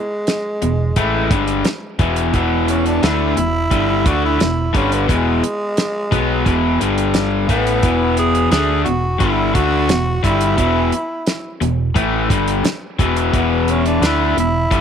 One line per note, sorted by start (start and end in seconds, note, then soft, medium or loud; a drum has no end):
0.00 2.00 G#3 medium
0.27 snare medium
0.27 closed hi-hat medium
0.62 0.95 E1 medium
0.62 0.90 E2 medium
0.62 0.90 B2 medium
0.62 closed hi-hat medium
0.96 1.28 A1 medium
0.96 1.30 A2 medium
0.96 1.30 E3 medium
0.96 1.31 A3 medium
0.96 kick medium
0.96 closed hi-hat soft
1.30 1.63 G1 medium
1.30 1.64 G2 medium
1.30 1.65 D3 medium
1.30 1.65 G3 loud
1.30 kick loud
1.30 closed hi-hat medium
1.48 closed hi-hat medium
1.65 muted overdriven electric guitar stroke medium
1.65 muted distorted electric guitar stroke soft
1.65 snare loud
1.65 closed hi-hat medium
1.99 2.31 E1 medium
1.99 2.33 E2 medium
1.99 2.33 B2 medium
1.99 2.33 E3 medium
1.99 kick medium
1.99 closed hi-hat soft
2.16 closed hi-hat medium
2.34 2.99 E1 medium
2.34 3.02 E2 medium
2.34 3.02 B2 medium
2.34 3.02 E3 medium
2.34 2.71 B3 medium
2.34 kick medium
2.34 closed hi-hat soft
2.68 2.86 C#4 medium
2.68 closed hi-hat medium
2.86 3.05 D4 medium
2.86 closed hi-hat soft
3.03 3.35 D2 medium
3.03 3.36 D3 medium
3.03 3.37 A3 medium
3.03 3.37 D4 medium
3.03 3.37 E4 medium
3.03 snare loud
3.03 closed hi-hat medium
3.36 3.69 E1 medium
3.36 3.64 E2 medium
3.36 3.65 B2 medium
3.36 4.09 E4 medium
3.36 closed hi-hat medium
3.71 4.03 G1 medium
3.71 4.04 G2 medium
3.71 4.04 D3 loud
3.71 4.05 G3 medium
3.71 kick medium
3.71 closed hi-hat medium
4.05 4.37 D2 medium
4.05 4.39 D3 medium
4.05 4.39 A3 medium
4.05 4.39 D4 medium
4.05 4.24 F#4 loud
4.05 kick loud
4.05 closed hi-hat medium
4.25 4.40 E4 medium
4.40 4.72 E1 medium
4.40 4.67 E2 medium
4.40 4.68 B2 medium
4.40 4.78 E4 medium
4.40 snare loud
4.40 closed hi-hat medium
4.73 5.06 G1 medium
4.73 5.07 G2 medium
4.73 5.08 D3 medium
4.73 5.08 G3 medium
4.73 4.95 C#4 medium
4.73 kick medium
4.73 closed hi-hat soft
4.92 5.12 B3 medium
4.92 closed hi-hat medium
5.08 5.41 E1 medium
5.08 5.42 E2 medium
5.08 5.42 B2 medium
5.08 5.42 E3 medium
5.08 6.81 G#3 loud
5.08 kick medium
5.08 closed hi-hat medium
5.44 closed hi-hat medium
5.77 snare loud
5.77 closed hi-hat medium
6.11 6.44 B1 medium
6.11 6.44 B2 medium
6.11 6.45 F#3 medium
6.11 6.45 B3 medium
6.11 kick loud
6.11 closed hi-hat soft
6.45 6.78 E1 medium
6.45 6.79 E2 medium
6.45 6.79 B2 medium
6.45 6.80 E3 medium
6.45 kick medium
6.45 closed hi-hat medium
6.81 7.46 G1 medium
6.81 7.48 G2 medium
6.81 7.48 D3 loud
6.81 7.49 G3 loud
6.81 closed hi-hat medium
6.98 closed hi-hat medium
7.14 snare loud
7.14 closed hi-hat medium
7.48 7.81 A1 medium
7.48 7.82 A2 medium
7.48 7.83 E3 medium
7.48 7.83 A3 medium
7.48 8.15 B3 loud
7.48 kick medium
7.48 closed hi-hat medium
7.67 closed hi-hat soft
7.82 8.48 E1 medium
7.82 8.51 E2 medium
7.82 8.50 B2 medium
7.82 8.52 E3 medium
7.82 kick medium
7.82 closed hi-hat medium
8.17 8.51 G#4 medium
8.17 closed hi-hat medium
8.35 closed hi-hat soft
8.51 8.84 D2 medium
8.51 8.85 D3 medium
8.51 8.86 A3 medium
8.51 8.86 D4 medium
8.51 8.84 G#4 medium
8.51 snare loud
8.51 closed hi-hat medium
8.84 9.19 E1 medium
8.84 9.14 E2 medium
8.84 9.14 B2 medium
8.84 9.17 F#4 medium
8.84 closed hi-hat medium
9.19 9.53 G1 medium
9.19 9.53 G2 medium
9.19 9.52 D3 medium
9.19 9.54 G3 loud
9.19 9.56 E4 medium
9.19 kick medium
9.19 closed hi-hat soft
9.53 9.87 D2 medium
9.53 9.88 D3 medium
9.53 9.88 A3 loud
9.53 9.89 D4 loud
9.53 10.23 F#4 loud
9.53 kick loud
9.53 closed hi-hat medium
9.89 10.21 E1 medium
9.89 10.17 E2 medium
9.89 10.17 B2 medium
9.89 snare loud
9.89 closed hi-hat medium
10.23 10.56 G1 medium
10.23 10.56 G2 medium
10.23 10.57 D3 medium
10.23 10.57 G3 loud
10.23 11.58 E4 medium
10.23 kick medium
10.23 closed hi-hat medium
10.41 closed hi-hat medium
10.57 10.90 E1 medium
10.57 10.91 E2 medium
10.57 10.92 B2 medium
10.57 10.92 E3 medium
10.57 kick medium
10.57 closed hi-hat medium
10.92 closed hi-hat medium
11.27 snare medium
11.27 closed hi-hat medium
11.61 11.93 E1 medium
11.61 11.89 E2 medium
11.61 11.89 B2 medium
11.61 closed hi-hat medium
11.95 12.28 A1 medium
11.95 12.29 A2 medium
11.95 12.29 E3 medium
11.95 12.29 A3 medium
11.95 kick medium
11.95 closed hi-hat medium
12.29 12.62 G1 medium
12.29 12.63 G2 medium
12.29 12.64 D3 loud
12.29 12.64 G3 loud
12.29 kick loud
12.29 closed hi-hat medium
12.48 closed hi-hat medium
12.64 muted overdriven electric guitar stroke medium
12.64 muted distorted electric guitar stroke soft
12.64 snare loud
12.64 closed hi-hat medium
12.99 13.31 E1 medium
12.99 13.32 E2 medium
12.99 13.33 B2 medium
12.99 13.33 E3 loud
12.99 kick medium
12.99 closed hi-hat medium
13.17 closed hi-hat medium
13.33 13.98 E1 medium
13.33 14.01 E2 medium
13.33 14.01 B2 medium
13.33 14.02 E3 medium
13.33 13.72 B3 medium
13.33 kick medium
13.33 closed hi-hat medium
13.68 13.86 C#4 medium
13.68 closed hi-hat soft
13.86 14.07 D4 medium
13.86 closed hi-hat soft
14.01 14.34 D2 medium
14.01 14.35 D3 medium
14.01 14.36 A3 medium
14.01 14.36 D4 loud
14.01 snare medium
14.01 closed hi-hat medium
14.06 14.38 E4 loud
14.36 14.68 E1 medium
14.36 14.64 E2 medium
14.36 14.64 B2 medium
14.36 14.81 E4 medium
14.36 closed hi-hat medium
14.71 14.81 G1 medium
14.71 14.81 G2 medium
14.71 14.81 D3 loud
14.71 14.81 G3 loud
14.71 kick medium
14.71 closed hi-hat medium